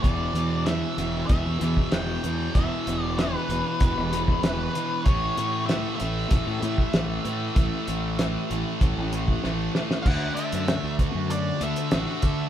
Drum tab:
CC |----------------|----------------|----------------|----------------|
HH |x-x-x-x-x-x-x-x-|x-x-x-x-x-x-x-x-|x-x-x-x-x-x-x-x-|x-x-x-x-x-x-----|
SD |----o-------o---|----o-------o---|----o-------o---|----o-------o-oo|
BD |o-------o--o----|o-------o--o----|o-------o--o----|o-------o--o----|

CC |x---------------|
HH |--xxx-x-x-xxx-x-|
SD |----o-------o---|
BD |o-----o-------o-|